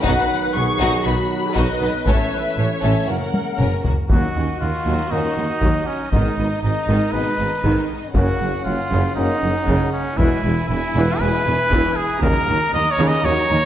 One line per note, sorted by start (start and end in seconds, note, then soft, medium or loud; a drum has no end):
0.02 0.14 B1 medium
0.02 0.16 B1 medium
0.02 0.13 B2 medium
0.02 1.89 F#3 medium
0.02 2.02 B3 medium
0.02 0.28 D#4 medium
0.02 2.03 D#4 medium
0.02 0.28 F#4 medium
0.02 0.55 B4 medium
0.02 0.53 F#5 medium
0.02 taiko medium
0.07 1.89 D#3 medium
0.54 0.64 B1 medium
0.54 0.66 B1 soft
0.54 0.64 B2 medium
0.54 0.63 B3 medium
0.54 1.06 G#4 medium
0.54 1.04 C#6 medium
0.80 0.88 B1 medium
0.80 0.91 B1 medium
0.80 0.89 B2 medium
0.80 1.04 D#4 medium
0.80 1.04 F#4 medium
1.05 1.16 B1 soft
1.05 1.14 B1 soft
1.05 1.14 B2 soft
1.05 1.14 B3 soft
1.05 1.14 D#4 soft
1.05 1.56 F#4 medium
1.05 1.56 B5 medium
1.55 1.66 B1 medium
1.55 1.64 B1 medium
1.55 1.64 B2 medium
1.55 1.79 D#4 medium
1.55 1.79 F#4 medium
1.55 2.07 B4 medium
1.55 2.06 D#5 medium
1.55 taiko medium
1.81 1.90 B1 soft
1.81 1.92 B1 soft
1.81 1.89 B2 soft
1.81 1.90 B3 soft
1.81 1.90 D#4 soft
2.05 2.14 A1 medium
2.05 2.18 A1 medium
2.05 2.15 A2 medium
2.05 3.08 E3 medium
2.05 3.06 A3 medium
2.05 3.85 C#4 medium
2.05 2.31 C#4 medium
2.05 2.30 A4 medium
2.05 2.32 C#5 medium
2.05 2.80 E5 medium
2.05 taiko medium
2.32 2.58 B4 medium
2.57 2.65 A1 soft
2.57 2.69 A1 soft
2.57 2.66 A2 soft
2.57 2.66 A3 soft
2.57 2.66 C#4 soft
2.57 3.09 C#5 medium
2.81 2.91 A1 medium
2.81 2.94 A1 medium
2.81 2.92 A2 medium
2.81 3.06 C#4 medium
2.81 3.06 A4 medium
2.81 3.07 E5 medium
3.07 3.18 F#1 soft
3.07 3.17 F#1 soft
3.07 3.19 F#2 soft
3.07 3.85 C#3 soft
3.07 3.15 A#3 soft
3.07 3.85 A#3 soft
3.07 3.16 F#4 soft
3.07 3.85 A#4 medium
3.07 3.84 F#5 medium
3.34 taiko high medium
3.59 3.67 F#1 medium
3.59 3.70 F#1 medium
3.59 3.69 F#2 medium
3.59 3.83 C#4 soft
3.59 3.83 A#4 medium
3.59 taiko mid medium
3.83 3.95 F#1 soft
3.83 3.94 F#1 soft
3.83 3.94 F#2 soft
3.83 3.91 A#3 soft
3.83 3.91 F#4 soft
3.83 taiko low medium
4.09 4.20 D#2 medium
4.09 4.19 D#2 medium
4.09 4.20 D#2 medium
4.09 4.27 A#2 soft
4.09 4.35 F#3 soft
4.09 4.27 A#3 soft
4.09 4.27 C#4 soft
4.09 4.27 D#4 soft
4.09 6.08 F#4 soft
4.09 4.57 F#4 medium
4.09 8.12 D#5 soft
4.09 taiko medium
4.35 4.43 D#2 soft
4.35 4.44 D#2 soft
4.35 4.46 D#2 soft
4.35 4.46 C#4 soft
4.61 4.69 D#2 soft
4.61 4.71 D#2 soft
4.61 4.70 D#2 soft
4.61 4.70 A#3 soft
4.61 5.13 F4 medium
4.86 4.96 D#2 medium
4.86 4.94 D#2 medium
4.86 4.95 D#2 medium
4.86 5.11 F#3 medium
5.10 5.20 D#2 soft
5.10 5.22 D#2 soft
5.10 5.20 D#2 soft
5.10 5.28 A#2 soft
5.10 5.28 A#3 soft
5.10 5.29 C#4 soft
5.10 5.21 C#4 soft
5.10 5.29 D#4 soft
5.10 5.88 D#4 medium
5.37 5.45 D#2 soft
5.37 5.47 D#2 soft
5.37 5.46 A#3 soft
5.61 5.69 D#2 medium
5.61 5.72 D#2 medium
5.61 5.70 D#2 medium
5.61 5.86 F#3 soft
5.61 taiko medium
5.87 6.11 C#4 medium
6.11 6.21 G#1 medium
6.11 6.24 G#1 medium
6.11 6.20 G#2 medium
6.11 6.31 B2 soft
6.11 6.37 D#3 medium
6.11 6.31 G#3 soft
6.11 6.30 B3 soft
6.11 6.61 D#4 medium
6.11 8.12 D#4 soft
6.11 6.31 D#4 medium
6.11 taiko medium
6.38 6.49 G#1 soft
6.38 6.46 G#1 soft
6.38 6.47 G#2 soft
6.38 6.47 B3 soft
6.62 6.71 G#1 soft
6.62 6.74 G#1 soft
6.62 6.72 G#2 soft
6.62 6.72 G#3 soft
6.62 7.14 D#4 medium
6.87 6.95 G#1 medium
6.87 6.99 G#1 medium
6.87 6.96 G#2 medium
6.87 7.13 D#3 medium
7.12 7.24 G#1 soft
7.12 7.21 G#1 soft
7.12 7.21 G#2 soft
7.12 7.32 B2 soft
7.12 7.31 G#3 soft
7.12 7.31 B3 soft
7.12 7.22 B3 soft
7.12 7.31 D#4 medium
7.12 7.90 B4 medium
7.39 7.47 G#1 soft
7.39 7.50 G#1 soft
7.39 7.48 G#2 soft
7.39 7.48 G#3 soft
7.64 7.72 G#1 medium
7.64 7.75 G#1 medium
7.64 7.73 G#2 medium
7.64 7.89 D#3 medium
7.64 taiko medium
8.13 8.23 F#1 medium
8.13 8.26 F#1 medium
8.13 8.23 F#2 medium
8.13 8.33 C#3 medium
8.13 8.39 C#3 medium
8.13 8.32 A#3 medium
8.13 8.33 A#3 soft
8.13 8.32 C#4 medium
8.13 10.15 C#4 medium
8.13 8.62 F#4 medium
8.13 10.15 F#5 soft
8.13 taiko medium
8.41 8.49 F#1 soft
8.41 8.52 F#1 soft
8.41 8.49 F#2 soft
8.41 8.49 A#3 soft
8.65 8.77 F#1 soft
8.65 8.75 F#1 soft
8.65 8.74 F#2 soft
8.65 8.74 F#3 soft
8.65 9.15 F4 medium
8.91 8.99 F#1 medium
8.91 9.02 F#1 medium
8.91 8.99 F#2 medium
8.91 9.16 C#3 medium
9.15 9.27 F#1 soft
9.15 9.25 F#1 soft
9.15 9.24 F#2 soft
9.15 9.35 C#3 medium
9.15 9.34 A#3 medium
9.15 9.35 A#3 medium
9.15 9.25 A#3 soft
9.15 9.34 C#4 medium
9.15 9.92 D#4 medium
9.42 9.50 F#1 soft
9.42 9.53 F#1 soft
9.42 9.51 F#2 soft
9.42 9.51 F#3 soft
9.67 9.75 F#1 medium
9.67 9.78 F#1 medium
9.67 9.76 F#2 medium
9.67 9.92 C#3 medium
9.67 taiko medium
9.92 10.19 C#4 medium
10.17 10.27 E1 medium
10.17 10.29 E1 medium
10.17 10.27 E2 medium
10.17 10.38 B2 medium
10.17 10.43 E3 medium
10.17 10.38 G#3 medium
10.17 10.36 B3 medium
10.17 10.68 E4 medium
10.17 12.23 E4 medium
10.17 10.37 E4 medium
10.17 12.18 G#5 medium
10.17 taiko medium
10.44 10.52 E1 medium
10.44 10.55 E1 soft
10.44 10.52 E2 soft
10.44 10.52 G#3 soft
10.69 10.78 E1 soft
10.69 10.81 E1 soft
10.69 10.78 E2 soft
10.69 10.78 E3 soft
10.69 11.21 E4 medium
10.95 11.03 E1 medium
10.95 11.06 E1 medium
10.95 11.03 E2 medium
10.95 11.19 E3 medium
11.19 11.28 E1 soft
11.19 11.32 E1 soft
11.19 11.29 E2 medium
11.19 11.39 B2 medium
11.19 11.29 G#3 medium
11.19 11.40 G#3 medium
11.19 11.40 B3 medium
11.19 11.39 E4 medium
11.19 11.98 B4 medium
11.45 11.54 E1 soft
11.45 11.57 E1 soft
11.45 11.55 E2 soft
11.45 11.53 E3 soft
11.70 11.79 E1 medium
11.70 11.82 E1 medium
11.70 11.81 E2 medium
11.70 11.95 E3 medium
11.70 taiko medium
11.96 12.22 G#4 medium
12.22 12.30 D#2 medium
12.22 12.33 D#2 medium
12.22 12.31 D#2 medium
12.22 12.47 C#3 medium
12.22 12.41 D#3 medium
12.22 12.41 F#3 medium
12.22 12.41 A#3 medium
12.22 13.65 D#4 medium
12.22 12.42 D#4 medium
12.22 12.73 A#4 loud
12.22 13.65 A#5 medium
12.22 taiko medium
12.47 12.55 D#2 medium
12.47 12.58 D#2 medium
12.47 12.55 F#3 medium
12.73 12.84 D#2 medium
12.73 12.82 D#2 medium
12.73 12.81 D#3 soft
12.73 12.93 D#5 medium
12.91 13.09 C#5 medium
12.99 13.09 D#2 medium
12.99 13.07 D#2 medium
12.99 13.08 D#2 medium
12.99 13.23 C#3 medium
13.08 13.26 D#5 medium
13.24 13.32 D#2 medium
13.24 13.33 D#2 medium
13.24 13.35 D#2 medium
13.24 13.44 D#3 medium
13.24 13.32 F#3 medium
13.24 13.44 F#3 medium
13.24 13.42 A#3 medium
13.24 13.43 D#4 medium
13.24 13.65 C#5 loud
13.50 13.58 D#2 medium
13.50 13.61 D#2 medium
13.50 13.59 D#2 medium
13.50 13.59 D#3 medium